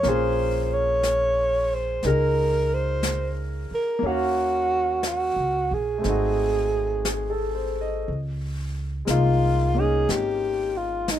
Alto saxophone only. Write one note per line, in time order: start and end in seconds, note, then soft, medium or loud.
0.08 0.63 C5 medium
0.63 0.75 C5 medium
0.73 1.75 C#5 medium
1.74 2.07 C5 medium
2.06 2.76 A#4 medium
2.74 3.36 C5 medium
3.75 4.08 A#4 medium
4.06 5.05 F#4 medium
5.07 5.75 F#4 medium
5.74 7.76 G#4 medium
9.10 9.80 F4 medium
9.79 10.12 G#4 medium
10.11 10.79 G4 medium
10.77 11.13 F4 medium
11.11 11.19 D#4 medium